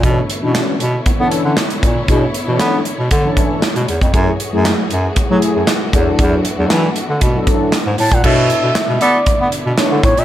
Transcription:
0.00 0.21 B2 loud
0.00 4.10 D3 medium
0.00 0.20 E3 medium
0.00 4.10 A3 medium
0.00 4.10 B3 medium
0.00 0.20 C#4 medium
0.00 0.20 D4 medium
0.00 4.10 E4 medium
0.00 0.20 A4 medium
0.00 5.89 C#5 medium
0.00 kick loud
0.00 closed hi-hat medium
0.30 closed hi-hat medium
0.42 0.60 B2 medium
0.42 0.74 E3 loud
0.42 0.74 C#4 medium
0.42 0.74 D4 medium
0.42 0.74 F#4 loud
0.55 snare loud
0.55 clap loud
0.55 closed hi-hat medium
0.80 0.98 B2 loud
0.80 closed hi-hat medium
1.06 1.12 B3 soft
1.06 kick loud
1.06 closed hi-hat medium
1.19 1.56 E3 loud
1.19 1.28 B3 loud
1.19 1.56 C#4 medium
1.19 1.56 D4 medium
1.19 1.56 A4 loud
1.31 closed hi-hat medium
1.45 1.53 D3 medium
1.57 snare loud
1.57 clap medium
1.57 closed hi-hat medium
1.70 closed hi-hat medium
1.83 2.01 A#2 medium
1.83 kick loud
1.83 closed hi-hat medium
2.08 2.26 B2 loud
2.08 2.25 E3 medium
2.08 2.25 C#4 medium
2.08 2.25 D4 medium
2.08 2.25 G#4 medium
2.08 kick loud
2.08 closed hi-hat medium
2.34 closed hi-hat medium
2.47 2.56 B2 medium
2.47 2.79 E3 loud
2.47 2.79 C#4 medium
2.47 2.80 D4 medium
2.47 2.80 A4 loud
2.60 2.78 B3 loud
2.60 snare loud
2.60 clap medium
2.60 closed hi-hat medium
2.85 closed hi-hat medium
2.99 3.07 B2 medium
3.11 3.29 D3 loud
3.11 kick loud
3.11 closed hi-hat medium
3.24 3.61 E3 loud
3.24 3.61 C#4 loud
3.24 3.62 D4 medium
3.24 3.62 A4 loud
3.37 kick medium
3.37 closed hi-hat medium
3.62 snare loud
3.62 clap medium
3.62 closed hi-hat medium
3.76 3.84 B2 loud
3.76 closed hi-hat medium
3.88 3.98 E2 medium
3.88 closed hi-hat medium
4.01 4.10 F2 medium
4.01 kick medium
4.01 closed hi-hat medium
4.13 4.32 F#2 loud
4.13 8.20 E3 medium
4.13 4.30 F#3 medium
4.13 4.30 A3 medium
4.13 8.20 A3 medium
4.13 4.30 E4 medium
4.13 8.20 F#4 medium
4.13 5.91 G#4 medium
4.13 4.30 G#4 medium
4.13 kick loud
4.13 closed hi-hat medium
4.40 closed hi-hat medium
4.53 4.71 F#2 loud
4.53 4.84 F#3 medium
4.53 4.84 A3 medium
4.53 4.85 E4 medium
4.53 4.85 G#4 loud
4.65 snare loud
4.65 clap loud
4.65 closed hi-hat medium
4.91 5.09 F#2 medium
4.91 closed hi-hat medium
5.16 5.22 F#3 soft
5.16 kick loud
5.16 closed hi-hat medium
5.29 5.66 F#3 medium
5.29 5.38 F#3 loud
5.29 5.67 A3 loud
5.29 5.67 E4 medium
5.29 5.67 G#4 loud
5.42 closed hi-hat medium
5.56 5.64 F#2 medium
5.67 snare loud
5.67 clap medium
5.67 closed hi-hat medium
5.93 6.11 E2 loud
5.93 6.44 F#3 loud
5.93 8.21 B3 medium
5.93 8.21 D4 medium
5.93 6.44 D4 medium
5.93 6.45 E4 medium
5.93 6.45 A4 loud
5.93 kick loud
5.93 closed hi-hat medium
6.19 6.37 E2 loud
6.19 kick loud
6.19 closed hi-hat medium
6.45 closed hi-hat medium
6.58 6.72 E2 loud
6.58 6.90 F#3 medium
6.58 6.90 D4 medium
6.58 6.90 E4 medium
6.58 6.90 A4 loud
6.70 6.88 E3 loud
6.70 snare loud
6.70 clap medium
6.70 closed hi-hat medium
6.96 closed hi-hat medium
7.09 7.18 D3 medium
7.21 7.39 B2 medium
7.21 kick medium
7.21 closed hi-hat medium
7.35 7.72 F#3 loud
7.35 7.72 D4 medium
7.35 7.72 E4 medium
7.35 7.72 A4 loud
7.47 kick medium
7.47 closed hi-hat medium
7.72 snare loud
7.72 clap medium
7.72 closed hi-hat medium
7.86 7.95 G#2 medium
7.98 8.08 A2 medium
7.98 8.14 A5 loud
7.98 open hi-hat medium
8.11 8.20 A#2 medium
8.11 8.27 F#5 loud
8.11 kick medium
8.11 closed hi-hat medium
8.24 8.51 B2 loud
8.24 10.25 D3 medium
8.24 10.25 A3 medium
8.24 8.67 B3 medium
8.24 10.25 B3 medium
8.24 8.67 D4 medium
8.24 10.25 D4 medium
8.24 8.67 E4 medium
8.24 8.36 E4 medium
8.24 10.25 E4 medium
8.24 8.36 F#4 medium
8.24 8.67 A4 medium
8.24 8.36 A4 medium
8.24 8.68 C#5 medium
8.24 9.01 E5 loud
8.24 kick loud
8.24 crash loud
8.50 closed hi-hat medium
8.63 8.72 B2 medium
8.75 snare loud
8.75 clap loud
8.75 closed hi-hat medium
8.89 8.97 B2 loud
9.01 9.19 B3 loud
9.01 9.17 E4 medium
9.01 9.17 F#4 medium
9.01 9.17 A4 loud
9.01 9.49 D5 medium
9.01 closed hi-hat medium
9.26 9.32 B3 medium
9.26 kick loud
9.26 closed hi-hat medium
9.40 9.48 B3 loud
9.52 closed hi-hat medium
9.65 9.74 B2 loud
9.78 9.99 B3 medium
9.78 9.99 D4 medium
9.78 9.99 E4 medium
9.78 10.00 A4 medium
9.78 10.00 C#5 loud
9.78 snare loud
9.78 clap medium
9.78 closed hi-hat medium
9.91 10.00 D3 medium
10.03 10.13 A2 medium
10.03 10.20 C#5 medium
10.03 kick loud
10.03 closed hi-hat medium
10.17 10.25 A#2 loud
10.17 10.25 E5 medium
10.17 closed hi-hat medium

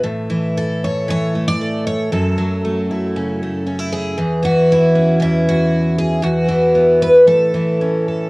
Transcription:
0.00 2.09 A2 medium
0.00 0.29 E3 medium
0.00 1.35 E4 soft
0.30 1.08 E3 medium
0.57 1.35 A4 medium
0.84 1.09 C#5 medium
1.08 2.15 E3 medium
1.08 1.47 C#5 loud
1.35 2.63 A3 soft
1.48 1.86 D5 loud
1.61 2.09 A4 soft
1.87 2.12 C#5 medium
2.12 4.15 F#2 medium
2.12 3.67 A4 medium
2.38 4.15 F#3 medium
2.65 3.41 A3 soft
2.91 3.66 E4 soft
3.16 4.15 C#3 medium
3.43 4.18 A3 soft
3.67 3.79 C#4 soft
3.79 4.17 E4 soft
3.93 4.43 G#4 medium
4.18 5.19 E2 medium
4.43 6.47 E3 medium
4.43 5.21 F#4 medium
4.72 5.21 E4 medium
4.95 6.20 C#4 soft
5.20 6.21 E2 medium
5.20 5.98 E4 medium
5.49 5.98 F#4 medium
5.98 6.23 G#4 medium
6.22 7.27 E2 medium
6.22 7.01 F#4 medium
6.49 7.53 E3 medium
6.75 7.24 B3 soft
7.02 7.27 B4 loud
7.27 8.30 A2 medium
7.27 8.07 A4 medium
7.54 8.30 E3 medium
7.81 8.30 C#4 soft
8.08 8.30 A4 soft

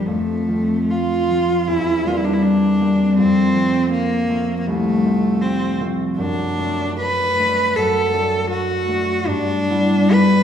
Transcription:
0.00 0.10 A#1 soft
0.00 0.47 F3 soft
0.00 0.11 A#3 soft
0.00 0.11 D4 soft
0.07 1.72 F2 soft
0.07 0.92 A3 medium
0.48 1.29 F3 soft
0.48 1.30 C4 soft
0.90 1.69 F4 medium
1.30 1.71 F3 soft
1.30 2.04 C4 soft
1.68 3.21 E2 soft
1.68 2.09 E4 medium
2.05 2.79 G3 soft
2.05 2.79 A#3 soft
2.05 2.80 C4 soft
2.05 2.18 F4 medium
2.17 2.26 E4 medium
2.24 2.35 D4 medium
2.33 2.43 E4 medium
2.42 3.17 D4 medium
2.80 3.21 G3 soft
2.80 3.21 A#3 soft
2.80 3.55 C4 soft
3.18 6.21 F2 soft
3.18 3.90 C4 medium
3.55 4.28 F3 soft
3.55 4.28 A3 soft
3.55 4.29 C4 soft
3.92 4.58 A#3 medium
4.29 5.04 F3 soft
4.29 5.04 A3 soft
4.29 5.04 C4 soft
4.60 4.68 A#3 soft
4.66 6.21 C2 soft
4.66 5.44 A3 medium
5.05 5.79 F3 soft
5.05 5.79 A3 soft
5.05 5.80 C4 soft
5.42 5.80 C4 medium
5.80 6.21 F3 soft
5.80 6.58 A3 soft
5.80 6.22 C4 soft
6.18 7.76 F#2 soft
6.18 6.96 D4 medium
6.59 7.38 A3 soft
6.59 7.39 D4 soft
7.00 7.78 B4 medium
7.39 8.12 A3 soft
7.39 8.12 D4 soft
7.76 9.31 F#2 soft
7.76 8.50 A4 medium
8.13 8.88 A3 soft
8.13 8.88 D4 soft
8.51 9.29 F#4 medium
8.88 9.31 A3 soft
8.88 10.43 D4 soft
9.27 10.43 G2 soft
9.27 10.14 D4 medium
9.69 10.43 G3 soft
9.69 10.43 B3 soft
9.69 10.43 E4 soft
10.13 10.43 B4 medium

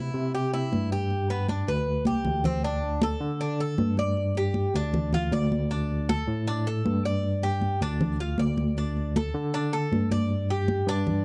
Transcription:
0.00 0.33 E4 medium
0.14 0.68 C3 loud
0.34 0.53 G4 medium
0.34 high conga soft
0.53 0.90 E4 medium
0.53 high conga soft
0.72 1.62 G2 medium
0.72 high conga medium
0.92 1.29 G4 medium
1.10 high conga soft
1.30 1.48 B3 medium
1.30 high conga soft
1.49 1.68 D4 medium
1.49 high conga medium
1.67 2.04 D2 loud
1.67 2.05 B4 medium
1.67 high conga soft
1.87 high conga soft
2.05 2.24 C2 medium
2.05 2.44 G4 medium
2.05 high conga medium
2.25 3.16 D2 medium
2.25 low conga medium
2.44 2.63 C4 medium
2.44 low conga medium
2.63 3.01 D4 medium
2.63 high conga soft
2.82 high conga soft
3.02 3.40 A4 medium
3.02 high conga loud
3.20 3.74 D3 loud
3.40 3.59 D4 medium
3.40 high conga soft
3.60 3.97 A4 medium
3.60 high conga soft
3.78 4.68 G2 loud
3.78 high conga medium
3.97 4.36 D5 medium
3.97 high conga medium
4.17 high conga soft
4.35 4.74 G4 medium
4.35 high conga soft
4.54 high conga medium
4.74 5.28 D2 medium
4.74 5.12 D4 medium
4.74 high conga soft
4.94 high conga soft
4.94 low conga medium
5.13 5.32 F4 medium
5.13 high conga soft
5.13 low conga medium
5.32 6.22 D2 loud
5.32 5.70 D5 medium
5.32 high conga medium
5.52 high conga medium
5.71 6.08 D4 medium
5.71 high conga soft
5.91 high conga soft
6.09 6.46 A4 medium
6.09 high conga loud
6.27 6.81 A2 loud
6.47 6.66 D4 medium
6.47 high conga soft
6.66 7.04 A4 medium
6.66 high conga soft
6.85 7.75 G2 loud
6.85 high conga medium
7.05 7.42 D5 medium
7.23 high conga soft
7.42 7.80 G4 medium
7.42 high conga soft
7.61 high conga medium
7.81 8.34 D2 medium
7.81 8.19 D4 medium
7.81 high conga soft
8.01 high conga soft
8.01 low conga medium
8.19 8.38 F4 medium
8.19 high conga soft
8.38 9.28 D2 loud
8.38 8.76 D5 medium
8.38 high conga medium
8.57 high conga medium
8.77 9.14 D4 medium
8.77 high conga soft
8.97 high conga soft
9.16 9.53 A4 medium
9.16 high conga medium
9.34 9.88 D3 loud
9.54 9.72 D4 medium
9.54 high conga soft
9.73 10.10 A4 medium
9.73 high conga soft
9.91 10.81 G2 medium
9.91 high conga medium
10.11 10.48 D5 medium
10.11 high conga medium
10.30 high conga soft
10.49 10.87 G4 medium
10.49 high conga soft
10.68 high conga medium
10.87 11.25 G2 loud
10.87 11.25 D4 medium
10.87 high conga soft
11.07 high conga soft
11.07 low conga medium

